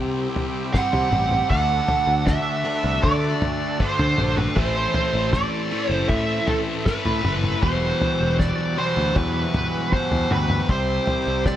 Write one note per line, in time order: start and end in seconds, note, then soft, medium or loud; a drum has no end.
0.00 0.27 C3 medium
0.00 0.72 C3 medium
0.00 0.72 G3 medium
0.00 1.47 G3 medium
0.00 0.71 C4 medium
0.00 1.48 C4 medium
0.00 1.47 E4 medium
0.00 1.48 G4 medium
0.36 floor tom medium
0.73 1.48 C3 medium
0.73 1.49 G3 medium
0.73 1.49 C4 medium
0.73 1.46 F#5 medium
0.73 kick loud
0.73 snare medium
0.73 mid tom medium
0.93 1.08 C3 medium
0.93 floor tom medium
1.11 1.41 A1 medium
1.11 mid tom medium
1.31 mid tom medium
1.50 1.80 D2 medium
1.50 2.63 D3 medium
1.50 2.66 A3 medium
1.50 7.59 A3 medium
1.50 4.54 D4 soft
1.50 2.63 D4 medium
1.50 4.54 F#4 soft
1.50 7.59 A4 medium
1.50 2.26 F#5 medium
1.50 kick medium
1.50 floor tom medium
1.88 floor tom medium
2.07 2.36 D2 medium
2.27 2.99 E5 medium
2.27 kick medium
2.27 snare medium
2.27 floor tom medium
2.65 3.78 D3 medium
2.65 3.78 A3 medium
2.65 3.78 D4 medium
2.84 2.99 C2 medium
3.03 3.33 D3 medium
3.03 3.80 D5 medium
3.03 kick loud
3.03 floor tom medium
3.42 floor tom medium
3.42 mid tom medium
3.79 4.54 D3 medium
3.79 4.55 A3 medium
3.79 4.55 D4 medium
3.79 4.34 C5 medium
3.79 kick medium
3.79 mid tom medium
3.99 4.14 D3 medium
3.99 floor tom medium
4.18 4.47 A#1 medium
4.18 mid tom medium
4.37 4.56 B4 medium
4.37 mid tom medium
4.56 4.86 A1 medium
4.56 5.69 A2 medium
4.56 5.72 E3 medium
4.56 5.70 A3 medium
4.56 7.60 C4 medium
4.56 10.66 E4 medium
4.56 5.29 C5 medium
4.56 kick medium
4.56 floor tom medium
4.94 floor tom medium
5.14 5.43 A1 medium
5.33 5.91 D5 medium
5.33 kick loud
5.33 snare medium
5.33 floor tom medium
5.71 6.85 A2 medium
5.71 6.87 E3 medium
5.71 6.84 A3 medium
5.90 6.04 F#1 medium
5.90 6.08 C5 medium
6.08 6.39 A2 medium
6.08 6.49 E5 medium
6.08 kick loud
6.08 floor tom medium
6.47 6.58 A4 medium
6.47 floor tom medium
6.86 7.61 A2 medium
6.86 7.65 E3 medium
6.86 7.62 A3 medium
6.86 7.59 B4 medium
6.86 kick loud
6.86 snare medium
6.86 mid tom medium
7.05 7.20 A2 medium
7.05 floor tom medium
7.24 7.53 F#1 medium
7.24 mid tom medium
7.44 mid tom medium
7.62 7.92 E1 medium
7.62 8.75 E2 medium
7.62 8.76 B2 medium
7.62 8.76 E3 medium
7.62 10.66 F#3 medium
7.62 10.66 G3 medium
7.62 10.66 F#4 medium
7.62 8.35 C5 medium
7.62 kick medium
7.62 floor tom medium
8.01 floor tom medium
8.21 8.49 E1 medium
8.40 8.75 D5 medium
8.40 kick medium
8.40 snare medium
8.40 floor tom medium
8.77 9.91 E2 medium
8.77 9.91 B2 medium
8.77 9.90 E3 medium
8.77 9.17 C5 medium
8.97 9.12 D2 medium
9.16 9.45 E2 medium
9.16 9.93 B4 medium
9.16 kick loud
9.16 floor tom medium
9.54 floor tom medium
9.54 mid tom medium
9.92 10.67 E2 medium
9.92 10.68 B2 medium
9.92 10.68 E3 medium
9.92 10.32 C5 medium
9.92 kick medium
9.92 mid tom medium
10.12 10.26 E2 medium
10.12 floor tom medium
10.31 10.60 D2 medium
10.31 10.71 B4 medium
10.31 mid tom medium
10.50 mid tom medium
10.69 10.98 C2 medium
10.69 11.56 C3 medium
10.69 11.56 G3 medium
10.69 11.56 C4 medium
10.69 11.56 E4 medium
10.69 11.56 G4 medium
10.69 11.43 C5 medium
10.69 kick medium
10.69 floor tom medium
11.07 floor tom medium
11.27 11.56 C2 medium
11.46 11.56 D5 medium
11.46 kick medium
11.46 snare medium
11.46 floor tom medium